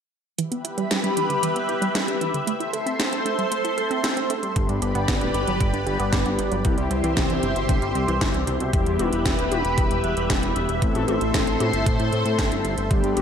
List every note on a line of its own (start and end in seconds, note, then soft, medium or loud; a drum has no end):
0.38 0.50 E3 medium
0.38 2.45 G4 medium
0.38 2.45 B4 medium
0.38 4.52 E5 medium
0.38 2.45 B5 medium
0.38 closed hi-hat medium
0.52 0.63 B3 medium
0.52 closed hi-hat soft
0.64 0.76 E4 medium
0.64 closed hi-hat medium
0.78 0.90 G3 loud
0.78 closed hi-hat soft
0.91 0.98 G3 loud
0.91 snare loud
0.91 closed hi-hat medium
1.04 1.16 G3 medium
1.04 closed hi-hat soft
1.17 1.24 E3 medium
1.17 closed hi-hat medium
1.30 1.42 D3 medium
1.30 closed hi-hat soft
1.43 1.54 E3 medium
1.43 closed hi-hat medium
1.56 1.67 B3 medium
1.56 closed hi-hat soft
1.69 1.80 E4 medium
1.69 closed hi-hat soft
1.82 1.94 G3 loud
1.82 closed hi-hat soft
1.95 2.02 G3 loud
1.95 snare loud
1.95 closed hi-hat medium
2.08 2.20 G3 medium
2.08 closed hi-hat soft
2.21 2.28 E3 medium
2.21 closed hi-hat medium
2.34 2.47 D3 medium
2.34 closed hi-hat soft
2.47 2.58 A3 medium
2.47 4.54 A4 medium
2.47 4.54 C5 medium
2.47 4.54 C6 medium
2.47 closed hi-hat medium
2.60 2.72 E4 medium
2.60 closed hi-hat soft
2.73 2.85 A4 medium
2.73 closed hi-hat medium
2.86 2.98 C4 loud
2.86 closed hi-hat soft
2.99 3.06 C4 loud
2.99 snare loud
2.99 closed hi-hat medium
3.13 3.25 C4 medium
3.13 closed hi-hat soft
3.25 3.32 A3 medium
3.25 closed hi-hat medium
3.39 3.51 G3 medium
3.39 closed hi-hat soft
3.52 3.63 A3 medium
3.52 closed hi-hat medium
3.64 3.76 E4 medium
3.64 closed hi-hat soft
3.78 3.89 A4 medium
3.78 closed hi-hat soft
3.91 4.02 C4 loud
3.91 closed hi-hat soft
4.04 4.10 C4 loud
4.04 snare loud
4.04 closed hi-hat medium
4.17 4.29 C4 medium
4.17 closed hi-hat soft
4.30 4.37 A3 medium
4.30 closed hi-hat medium
4.43 4.55 G3 medium
4.43 closed hi-hat soft
4.56 4.68 G1 loud
4.56 4.67 G3 medium
4.56 5.96 G3 medium
4.56 5.96 B3 medium
4.56 5.96 D4 medium
4.56 5.96 G4 loud
4.56 6.63 G4 medium
4.56 6.63 B4 medium
4.56 6.63 D5 medium
4.56 6.63 B5 medium
4.56 kick loud
4.56 closed hi-hat medium
4.69 4.81 G2 medium
4.69 4.80 D4 medium
4.69 closed hi-hat soft
4.82 4.94 G1 medium
4.82 4.93 G4 medium
4.82 closed hi-hat medium
4.95 5.07 G1 medium
4.95 5.07 B3 loud
4.95 closed hi-hat soft
5.08 5.20 G1 loud
5.08 5.15 B3 loud
5.08 kick loud
5.08 snare loud
5.08 closed hi-hat medium
5.21 5.33 D1 medium
5.21 5.34 B3 medium
5.21 closed hi-hat soft
5.34 5.46 G1 medium
5.34 5.41 G3 medium
5.34 closed hi-hat medium
5.47 5.59 G1 medium
5.47 5.60 F#3 medium
5.47 closed hi-hat soft
5.60 5.72 G1 loud
5.60 5.72 G3 medium
5.60 kick loud
5.60 closed hi-hat medium
5.73 5.85 G1 medium
5.73 5.85 D4 medium
5.73 closed hi-hat soft
5.86 5.98 G1 medium
5.86 5.98 G4 medium
5.86 closed hi-hat soft
5.99 6.11 G1 medium
5.99 6.62 G3 medium
5.99 6.11 B3 loud
5.99 6.62 B3 medium
5.99 6.62 D4 medium
5.99 6.62 G4 medium
5.99 closed hi-hat soft
6.13 6.24 G1 loud
6.13 6.19 B3 loud
6.13 kick loud
6.13 snare loud
6.13 closed hi-hat medium
6.25 6.37 G1 medium
6.25 6.38 B3 medium
6.25 closed hi-hat soft
6.38 6.50 G1 medium
6.38 6.45 G3 medium
6.38 closed hi-hat medium
6.52 6.63 G1 medium
6.52 6.64 F#3 medium
6.52 closed hi-hat soft
6.65 6.76 C2 loud
6.65 6.76 C3 medium
6.65 8.05 G3 medium
6.65 8.05 C4 medium
6.65 8.05 E4 medium
6.65 8.05 G4 loud
6.65 8.71 G4 medium
6.65 8.71 C5 medium
6.65 8.71 E5 medium
6.65 8.71 C6 medium
6.65 kick loud
6.65 closed hi-hat medium
6.78 6.89 C2 medium
6.78 6.89 G3 medium
6.78 closed hi-hat soft
6.91 7.02 C2 medium
6.91 7.02 C4 medium
6.91 closed hi-hat medium
7.04 7.15 C2 medium
7.04 7.16 E3 loud
7.04 closed hi-hat soft
7.17 7.28 C2 loud
7.17 7.24 E3 loud
7.17 kick loud
7.17 snare loud
7.17 closed hi-hat medium
7.30 7.41 C2 medium
7.30 7.42 E3 medium
7.30 closed hi-hat soft
7.43 7.54 G1 medium
7.43 7.50 C3 medium
7.43 closed hi-hat medium
7.56 7.67 G1 medium
7.56 7.68 B2 medium
7.56 closed hi-hat soft
7.69 7.81 G1 loud
7.69 7.80 C3 medium
7.69 kick loud
7.69 closed hi-hat medium
7.82 7.94 G1 medium
7.82 7.93 G3 medium
7.82 closed hi-hat soft
7.95 8.07 C2 medium
7.95 8.06 C4 medium
7.95 closed hi-hat soft
8.08 8.20 C2 medium
8.08 8.20 E3 loud
8.08 8.70 G3 medium
8.08 8.70 C4 medium
8.08 8.70 E4 medium
8.08 8.70 G4 medium
8.08 closed hi-hat soft
8.21 8.33 G1 loud
8.21 8.28 E3 loud
8.21 kick loud
8.21 snare loud
8.21 closed hi-hat medium
8.34 8.46 C2 medium
8.34 8.47 E3 medium
8.34 closed hi-hat soft
8.47 8.59 C2 medium
8.47 8.54 C3 medium
8.47 closed hi-hat medium
8.60 8.72 C2 medium
8.60 8.73 B2 medium
8.60 closed hi-hat soft
8.73 8.85 E1 loud
8.73 10.14 G3 medium
8.73 10.14 B3 medium
8.73 10.14 E4 medium
8.73 10.80 G4 medium
8.73 10.14 G4 loud
8.73 10.80 B4 medium
8.73 12.87 E5 medium
8.73 10.80 B5 medium
8.73 kick loud
8.73 closed hi-hat medium
8.86 8.98 E2 medium
8.86 closed hi-hat soft
8.99 9.11 E1 medium
8.99 closed hi-hat medium
8.99 high tom medium
9.13 9.24 E1 medium
9.13 closed hi-hat soft
9.25 9.37 E1 loud
9.25 kick loud
9.25 snare loud
9.25 closed hi-hat medium
9.39 9.50 D1 medium
9.39 closed hi-hat soft
9.52 9.63 E1 medium
9.52 closed hi-hat medium
9.52 high tom medium
9.65 9.76 E1 medium
9.65 closed hi-hat soft
9.78 9.89 E1 loud
9.78 kick loud
9.78 closed hi-hat loud
9.91 10.02 E1 medium
9.91 closed hi-hat soft
10.04 10.15 E1 medium
10.04 closed hi-hat soft
10.17 10.28 E1 medium
10.17 10.79 G3 medium
10.17 10.79 B3 medium
10.17 10.79 E4 medium
10.17 10.79 G4 medium
10.17 closed hi-hat soft
10.30 10.41 E1 loud
10.30 kick loud
10.30 snare loud
10.30 closed hi-hat loud
10.43 10.54 E1 medium
10.43 closed hi-hat soft
10.56 10.67 E1 medium
10.56 closed hi-hat medium
10.69 10.80 E1 medium
10.69 closed hi-hat soft
10.82 10.94 A1 loud
10.82 12.22 A3 medium
10.82 12.22 C4 medium
10.82 12.22 E4 medium
10.82 12.89 A4 medium
10.82 12.22 A4 loud
10.82 12.89 C5 medium
10.82 12.89 C6 medium
10.82 kick loud
10.82 closed hi-hat medium
10.95 11.07 A1 medium
10.95 closed hi-hat soft
10.95 high tom medium
11.08 11.20 A1 medium
11.08 closed hi-hat medium
11.08 high tom medium
11.21 11.33 A1 medium
11.21 closed hi-hat soft
11.34 11.46 A1 loud
11.34 kick loud
11.34 snare loud
11.34 closed hi-hat medium
11.47 11.59 A1 medium
11.47 closed hi-hat soft
11.60 11.72 A2 medium
11.60 closed hi-hat medium
11.60 high tom medium
11.73 11.85 G1 medium
11.73 closed hi-hat soft
11.86 11.98 A2 loud
11.86 kick loud
11.86 closed hi-hat medium
11.99 12.11 A2 medium
11.99 closed hi-hat soft
12.12 12.24 A2 medium
12.12 closed hi-hat soft
12.25 12.37 A2 medium
12.25 12.88 A3 medium
12.25 12.88 C4 medium
12.25 12.88 E4 medium
12.25 12.88 A4 medium
12.25 closed hi-hat soft
12.38 12.50 G1 loud
12.38 kick loud
12.38 snare loud
12.38 closed hi-hat medium
12.51 12.63 G1 medium
12.51 closed hi-hat soft
12.64 12.76 G1 medium
12.64 closed hi-hat medium
12.78 12.89 G1 medium
12.78 closed hi-hat soft
12.91 13.02 G1 loud
12.91 13.22 G3 medium
12.91 13.22 B3 medium
12.91 13.22 D4 medium
12.91 13.22 G4 loud
12.91 13.22 G4 medium
12.91 13.22 B4 medium
12.91 13.22 D5 medium
12.91 13.22 B5 medium
12.91 kick loud
12.91 closed hi-hat medium
13.04 13.15 G2 medium
13.04 closed hi-hat soft
13.17 13.22 G1 medium
13.17 closed hi-hat medium
13.17 high tom medium